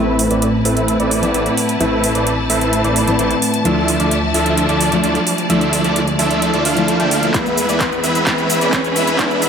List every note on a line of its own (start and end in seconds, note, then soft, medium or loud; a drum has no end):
0.00 0.28 A1 medium
0.00 1.20 A2 medium
0.00 0.28 A3 medium
0.00 1.20 A3 medium
0.00 0.28 C4 medium
0.00 1.20 C4 medium
0.00 0.28 E4 medium
0.00 1.21 E4 medium
0.00 3.62 E4 medium
0.00 0.28 B4 medium
0.00 1.20 B4 medium
0.00 3.61 B4 medium
0.00 0.28 E5 medium
0.00 7.30 A5 medium
0.00 riser medium
0.19 open hi-hat loud
0.31 0.63 A1 medium
0.31 0.47 A3 medium
0.31 0.47 C4 medium
0.31 0.47 E4 medium
0.31 0.47 B4 medium
0.31 0.47 D5 medium
0.31 closed hi-hat medium
0.42 closed hi-hat medium
0.65 0.97 A1 medium
0.65 0.97 A3 medium
0.65 0.97 C4 medium
0.65 0.97 E4 medium
0.65 0.97 B4 medium
0.65 0.97 E5 loud
0.65 open hi-hat loud
0.77 closed hi-hat medium
0.88 closed hi-hat medium
1.00 1.32 A1 medium
1.00 1.32 A3 medium
1.00 1.32 C4 medium
1.00 1.32 E4 medium
1.00 1.32 B4 medium
1.00 1.32 D5 medium
1.00 closed hi-hat soft
1.11 open hi-hat loud
1.22 1.77 A2 medium
1.22 1.78 A3 medium
1.22 1.78 B3 medium
1.22 1.78 C4 medium
1.22 1.78 E4 medium
1.22 closed hi-hat medium
1.34 1.48 A1 medium
1.34 1.50 A3 medium
1.34 1.50 C4 medium
1.34 1.51 E4 medium
1.34 1.50 B4 medium
1.34 1.50 D5 medium
1.34 closed hi-hat medium
1.46 closed hi-hat soft
1.57 open hi-hat loud
1.69 closed hi-hat medium
1.79 2.13 A1 medium
1.79 3.04 A2 medium
1.79 3.04 A3 medium
1.79 2.12 A3 medium
1.79 2.12 C4 medium
1.79 3.05 C4 medium
1.79 2.12 E4 medium
1.79 3.05 E4 medium
1.79 2.12 B4 medium
1.79 3.05 B4 medium
1.79 2.12 E5 medium
1.79 closed hi-hat medium
2.04 open hi-hat loud
2.15 2.47 A1 medium
2.15 2.31 A3 medium
2.15 2.31 C4 medium
2.15 2.31 E4 medium
2.15 2.31 B4 medium
2.15 2.31 D5 medium
2.15 closed hi-hat medium
2.27 closed hi-hat medium
2.50 2.82 A1 medium
2.50 2.82 A3 medium
2.50 2.82 C4 medium
2.50 2.82 E4 medium
2.50 2.82 B4 medium
2.50 2.82 E5 loud
2.50 open hi-hat loud
2.61 closed hi-hat medium
2.73 closed hi-hat medium
2.84 3.17 A1 medium
2.84 3.16 A3 medium
2.84 3.16 C4 medium
2.84 3.16 E4 medium
2.84 3.16 B4 medium
2.84 3.16 D5 medium
2.84 closed hi-hat soft
2.96 open hi-hat loud
3.06 3.62 A2 medium
3.06 3.62 A3 medium
3.06 3.62 B3 medium
3.06 3.63 C4 medium
3.06 3.63 E4 medium
3.06 closed hi-hat medium
3.19 3.33 A1 medium
3.19 3.35 A3 medium
3.19 3.35 C4 medium
3.19 3.35 E4 medium
3.19 3.35 B4 medium
3.19 3.35 D5 medium
3.19 closed hi-hat medium
3.31 closed hi-hat soft
3.42 open hi-hat loud
3.54 closed hi-hat medium
3.64 3.98 D2 medium
3.64 4.89 F3 medium
3.64 7.31 F3 medium
3.64 3.97 F3 medium
3.64 4.89 A3 medium
3.64 3.97 D4 medium
3.64 4.90 D4 medium
3.64 3.97 E4 medium
3.64 4.90 E4 medium
3.64 3.97 A4 medium
3.64 7.31 D5 medium
3.64 5.48 E5 medium
3.64 3.97 E5 medium
3.64 closed hi-hat medium
3.88 open hi-hat loud
4.00 4.32 D2 medium
4.00 4.16 F3 medium
4.00 4.16 D4 medium
4.00 4.16 E4 medium
4.00 4.16 A4 medium
4.00 4.16 D5 medium
4.00 closed hi-hat medium
4.11 closed hi-hat medium
4.34 4.67 D2 loud
4.34 4.66 F3 medium
4.34 4.66 D4 medium
4.34 4.66 E4 medium
4.34 4.66 A4 medium
4.34 4.66 E5 loud
4.34 open hi-hat loud
4.46 closed hi-hat medium
4.58 closed hi-hat medium
4.69 5.01 D2 medium
4.69 5.01 F3 medium
4.69 5.01 D4 medium
4.69 5.01 E4 medium
4.69 5.01 A4 medium
4.69 5.01 D5 loud
4.69 closed hi-hat soft
4.81 open hi-hat loud
4.91 5.46 F3 medium
4.91 5.47 A3 medium
4.91 5.47 D4 medium
4.91 5.48 E4 medium
4.91 closed hi-hat medium
5.04 5.17 D2 loud
5.04 5.20 F3 medium
5.04 5.20 D4 medium
5.04 5.20 E4 medium
5.04 5.20 A4 medium
5.04 5.20 D5 medium
5.04 closed hi-hat medium
5.15 closed hi-hat soft
5.27 open hi-hat loud
5.38 closed hi-hat medium
5.49 5.82 D2 medium
5.49 6.73 F3 medium
5.49 5.82 F3 medium
5.49 6.74 A3 medium
5.49 5.82 D4 medium
5.49 6.74 D4 medium
5.49 5.82 E4 medium
5.49 6.75 E4 medium
5.49 5.82 A4 medium
5.49 5.82 E5 medium
5.49 closed hi-hat medium
5.61 closed hi-hat soft
5.73 open hi-hat loud
5.84 6.17 D2 medium
5.84 6.01 F3 medium
5.84 6.01 D4 medium
5.84 6.01 E4 medium
5.84 6.01 A4 medium
5.84 6.01 D5 medium
5.84 closed hi-hat medium
5.96 closed hi-hat medium
6.08 closed hi-hat soft
6.19 6.51 D2 loud
6.19 6.51 F3 medium
6.19 6.51 D4 medium
6.19 6.51 E4 medium
6.19 6.51 A4 medium
6.19 6.51 E5 loud
6.19 open hi-hat loud
6.31 closed hi-hat soft
6.42 closed hi-hat medium
6.54 6.63 D2 medium
6.54 6.63 F3 medium
6.54 6.63 D4 medium
6.54 6.63 E4 medium
6.54 6.63 A4 medium
6.54 6.63 D5 medium
6.54 closed hi-hat soft
6.65 6.98 D2 loud
6.65 6.97 F3 medium
6.65 6.97 D4 medium
6.65 6.97 E4 medium
6.65 6.97 A4 medium
6.65 6.97 F5 loud
6.65 open hi-hat loud
6.76 7.31 F3 medium
6.76 7.31 A3 medium
6.76 7.32 D4 medium
6.76 7.32 E4 medium
6.76 closed hi-hat medium
6.88 closed hi-hat medium
7.00 7.09 D2 medium
7.00 7.10 F3 medium
7.00 7.10 D4 medium
7.00 7.10 E4 medium
7.00 7.10 A4 medium
7.00 7.10 G5 loud
7.00 closed hi-hat soft
7.11 7.32 D2 medium
7.11 7.32 F3 medium
7.11 7.32 D4 medium
7.11 7.32 E4 medium
7.11 7.32 A4 medium
7.11 7.32 F5 medium
7.11 open hi-hat loud
7.23 closed hi-hat soft
7.33 7.67 E2 medium
7.33 8.24 E3 medium
7.33 8.25 G#3 medium
7.33 7.66 G#3 medium
7.33 7.66 B3 medium
7.33 8.25 B3 medium
7.33 7.66 E4 medium
7.33 8.25 E4 medium
7.33 9.49 G#4 medium
7.33 7.66 B4 medium
7.33 9.49 B4 medium
7.33 7.66 E5 medium
7.33 9.49 E5 medium
7.33 9.49 B5 medium
7.33 kick loud
7.33 clap soft
7.33 closed hi-hat medium
7.33 shaker soft
7.46 shaker soft
7.58 open hi-hat loud
7.58 shaker medium
7.69 8.01 E2 medium
7.69 7.85 G#3 medium
7.69 7.85 B3 medium
7.69 7.85 E4 medium
7.69 7.85 B4 medium
7.69 7.85 D5 medium
7.69 closed hi-hat medium
7.69 shaker soft
7.81 kick loud
7.81 clap medium
7.81 closed hi-hat medium
7.81 shaker soft
7.92 shaker soft
8.04 8.24 E2 loud
8.04 8.25 G#3 medium
8.04 8.25 B3 medium
8.04 8.25 E4 medium
8.04 8.25 B4 medium
8.04 8.25 E5 medium
8.04 open hi-hat loud
8.04 shaker medium
8.15 closed hi-hat soft
8.15 shaker soft
8.26 8.59 E2 loud
8.26 9.17 E3 medium
8.26 9.17 G#3 medium
8.26 8.59 G#3 medium
8.26 8.59 B3 medium
8.26 9.17 B3 medium
8.26 8.59 E4 medium
8.26 9.18 E4 medium
8.26 8.59 B4 medium
8.26 8.59 E5 medium
8.26 kick loud
8.26 clap medium
8.26 closed hi-hat medium
8.26 shaker soft
8.38 closed hi-hat soft
8.38 shaker soft
8.50 open hi-hat loud
8.50 shaker medium
8.61 8.94 E2 loud
8.61 8.77 G#3 medium
8.61 8.77 B3 medium
8.61 8.77 E4 medium
8.61 8.77 B4 medium
8.61 8.77 D5 medium
8.61 closed hi-hat soft
8.61 shaker soft
8.73 kick loud
8.73 clap medium
8.73 closed hi-hat medium
8.73 shaker soft
8.84 closed hi-hat soft
8.84 shaker soft
8.96 9.17 E2 medium
8.96 9.17 G#3 medium
8.96 9.17 B3 medium
8.96 9.17 E4 medium
8.96 9.17 B4 medium
8.96 9.17 E5 medium
8.96 open hi-hat loud
8.96 shaker medium
9.07 closed hi-hat medium
9.07 shaker soft
9.18 9.49 E2 loud
9.18 9.49 E3 medium
9.18 9.49 G#3 medium
9.18 9.49 B3 medium
9.18 9.49 E4 medium
9.18 9.49 B4 medium
9.18 9.49 E5 medium
9.18 kick loud
9.18 clap medium
9.18 closed hi-hat medium
9.18 shaker soft
9.31 shaker soft
9.42 open hi-hat loud
9.42 shaker medium